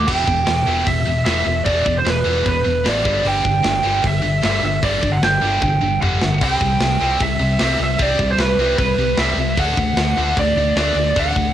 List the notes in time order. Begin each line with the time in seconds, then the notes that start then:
0.07 E1 E2 B2 E3 G5, kick, crash
0.27 E1 E2 B2, kick
0.47 E1 E2 B2, snare, open hi-hat
0.67 E1 E2 B2 E3
0.86 E1 E2 B2 E5, kick, open hi-hat
1.06 E1 E2 B2
1.25 E1 E2 B2 E3 E5, snare, open hi-hat
1.45 E1 E2 B2
1.65 E1 E2 B2 E3 D5, kick, open hi-hat
1.84 E1 E2 B2, kick
1.98 C5
2.05 E1 E2 B2, snare, open hi-hat
2.09 B4
2.24 E1 E2 B2 E3
2.45 E1 E2 B2 B4, kick, open hi-hat
2.65 E1 E2 B2
2.84 A1 E2 B2 E3 D5, snare, open hi-hat
3.05 G1 G2 D3 G3, kick
3.24 G1 G2 D3 G3 G5, open hi-hat
3.43 G1 G2 D3, kick
3.63 G1 G2 D3, snare, open hi-hat
3.83 G1 G2 D3 G3
4.03 G1 G2 D3 E5, kick, open hi-hat
4.22 G1 G2 D3
4.42 G1 G2 D3 G3 E5, snare, open hi-hat
4.63 G1 G2 D3 E5
4.83 G1 G2 D3 G3 D5, kick, open hi-hat
5.02 G1 G2 D3, kick
5.12 F#5
5.21 G1 G2 D3 G5, snare, open hi-hat
5.41 G1 G2 D3 G3
5.61 G1 G2 D3 G5, kick, high tom
5.81 G1 G2 D3
6.02 G1 G2 D3 G3 F#5, mid tom
6.21 G1 G2 D3, snare
6.41 C2 C3 G3 C4 G5, kick, open hi-hat, splash
6.60 C2 C3 G3, kick
6.80 C2 C3 G3, snare, open hi-hat
7.00 C2 C3 G3 C4
7.20 C2 C3 G3 E5, kick, open hi-hat
7.39 C2 C3 G3
7.59 C2 C3 G3 C4 E5, snare, open hi-hat
7.80 C2 C3 G3
7.84 E5
7.99 C2 C3 G3 C4 D5, kick, open hi-hat
8.18 C2 C3 G3, kick
8.31 C5
8.38 C2 C3 G3 B4, snare, open hi-hat
8.57 C2 C3 G3 C4
8.78 C2 C3 G3 B4, kick, open hi-hat
8.97 C2 C3 G3
9.17 C2 C3 G3 C4 E5, snare, open hi-hat
9.36 C2 C3 G3
9.57 D2 D3 A3 D4 F#5, kick, open hi-hat
9.77 D2 D3 A3, kick
9.96 D2 D3 A3, snare, open hi-hat
10.17 D2 D3 A3 D4
10.37 D2 D3 A3 D5, kick, open hi-hat
10.56 D2 D3 A3
10.76 D2 D3 A3 D4 D5, snare, open hi-hat
10.95 D2 D3 A3
11.16 D2 D3 A3 D4 F#5, kick, open hi-hat
11.35 D2 D3 A3, kick